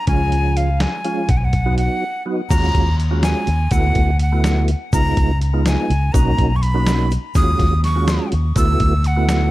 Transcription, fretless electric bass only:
0.07 C#2
1.29 B1
2.50 D#2
2.75 D#2
3.47 D#2
3.71 D2
3.96 D2
4.93 C#2
5.17 C#2
5.90 C#2
6.14 B1
6.39 B1
7.35 D#2
7.60 D#2
8.33 D#2
8.56 D2
8.80 D2

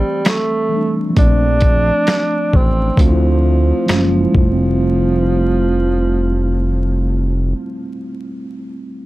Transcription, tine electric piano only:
Already playing: E3 G3 A3 C4
0.69 E3 G3
0.74 A3 D4
1.10 F3
1.15 A3
1.20 C4
1.26 D4
2.96 F3 A3
3.01 C4 D4
3.10 E4
3.86 F3 G#3
3.92 A3 C#4
3.98 A#3
4.21 E4
4.31 G3
4.41 A3
4.52 C4

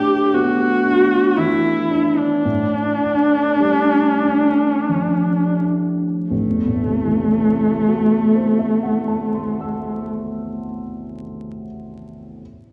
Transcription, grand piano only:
Already playing: A2 D4
0.34 B3
0.85 D4
1.38 E3
1.90 D4
2.45 A2
3.01 D4
3.59 G3
4.22 D4
4.89 F3
5.60 D4
6.31 A1
6.49 E2
6.67 A2
6.85 C3
7.04 E3
7.24 A3
7.44 C4
7.66 E4
7.88 F#4
8.11 A4
8.35 C5
8.59 E5
8.83 F#5
9.08 A5
9.34 C6
9.61 E6

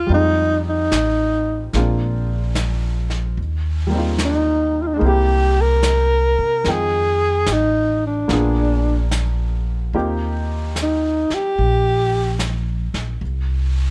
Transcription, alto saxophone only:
Already playing: F4
0.14 D#4
0.69 D#4
4.25 D#4
4.82 F4
4.87 D#4
4.93 D4
4.98 D#4
5.06 G4
5.61 A#4
6.71 G#4
7.53 D#4
8.06 D4
10.83 D#4
11.34 G4

